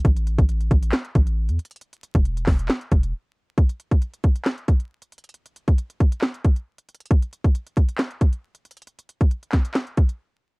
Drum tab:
HH |x-x-x-x-x-x-x-x-x-x-x-x---x-xxxx|x-x-x-x-x-x-o-x-x-x-x-x---------|x-x-x-x-x-x-x-x-x-x-x-x---x-xxxx|x-x-x-x-x-x-x-x-x-x-x-x---x-xxxx|
CP |----------------x---------------|------------x---x---------------|----------------x---------------|----------------x---------------|
SD |----------------o---------------|------------o---o---------------|----------------o---------------|----------------o---------------|
BD |o-----o-----o-------o-----------|------o-----o-------o-----------|o-----o-----o-------o-----------|------o-----o-------o-----------|

HH |x-x-x-x-x-x-x-x-x-x-x-x---x-xxxx|x-x-x-x-x-x-x-x-x-x-x-x---------|
CP |----------------x---------------|------------x---x---------------|
SD |----------------o---------------|------------o---o---------------|
BD |o-----o-----o-------o-----------|------o-----o-------o-----------|